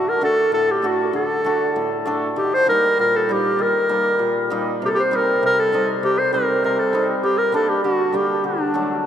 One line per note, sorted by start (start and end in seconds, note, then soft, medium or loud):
0.00 0.59 D3 soft
0.00 0.10 F#4 medium
0.09 0.24 A#4 medium
0.21 0.38 A3 medium
0.21 0.38 D4 medium
0.21 0.38 F#4 medium
0.21 0.52 A4 loud
0.52 1.20 A2 medium
0.52 0.73 A4 medium
0.71 0.88 G4 medium
0.82 0.99 A3 medium
0.82 0.99 D4 medium
0.82 1.00 F#4 medium
0.87 1.15 F#4 medium
1.13 1.82 D3 medium
1.13 2.03 A4 medium
1.45 1.61 A3 medium
1.45 1.61 D4 medium
1.45 1.61 F#4 medium
1.76 2.43 A2 medium
2.06 2.22 A3 medium
2.06 2.22 D4 medium
2.06 2.22 A4 medium
2.36 3.04 D#3 medium
2.36 2.56 G4 medium
2.54 2.68 C5 loud
2.66 3.28 G3 medium
2.66 2.83 A#3 medium
2.66 2.83 D#4 medium
2.66 2.97 A#4 loud
2.99 3.65 A#2 medium
2.99 3.17 A#4 loud
3.16 3.34 A4 medium
3.29 3.65 G3 medium
3.29 3.45 A#3 medium
3.29 3.45 D#4 medium
3.29 3.63 G4 medium
3.59 4.26 D#3 medium
3.59 4.52 A#4 medium
3.89 4.49 G3 medium
3.89 4.05 A#3 medium
3.89 4.06 D#4 medium
4.19 4.86 A#2 medium
4.50 4.86 G3 medium
4.50 4.66 A#3 medium
4.50 4.66 D#4 medium
4.82 5.41 C3 medium
4.82 4.88 G4 medium
4.87 4.96 A4 medium
4.95 5.01 G4 loud
5.00 5.17 C5 medium
5.11 5.71 G3 medium
5.11 5.27 C4 medium
5.11 5.28 D#4 medium
5.16 5.44 A#4 medium
5.43 6.02 C3 medium
5.43 5.61 A#4 loud
5.60 5.89 A4 medium
5.72 6.31 G3 medium
5.72 5.88 C4 medium
5.72 5.89 D#4 medium
6.03 6.63 C3 medium
6.03 6.20 G4 loud
6.18 6.33 C5 medium
6.32 6.92 G3 medium
6.32 6.48 C4 medium
6.32 6.49 D#4 medium
6.32 6.62 A#4 medium
6.64 7.29 C3 medium
6.64 6.80 A#4 medium
6.79 7.09 A4 medium
6.93 7.22 G3 medium
6.93 7.09 C4 medium
6.93 7.09 D#4 medium
7.23 7.51 G3 medium
7.23 7.39 G4 medium
7.38 7.54 A#4 medium
7.52 7.90 G3 medium
7.52 7.69 A#3 medium
7.52 7.69 D4 medium
7.52 7.71 A4 medium
7.69 7.83 G4 medium
7.84 8.43 D3 medium
7.84 8.16 F#4 medium
8.12 8.50 G3 medium
8.12 8.29 A#3 medium
8.12 8.30 D4 medium
8.12 8.45 G4 medium
8.44 9.06 D3 medium
8.44 9.06 D4 medium
8.74 9.06 F#3 medium
8.74 8.90 A3 medium
8.74 8.90 D4 medium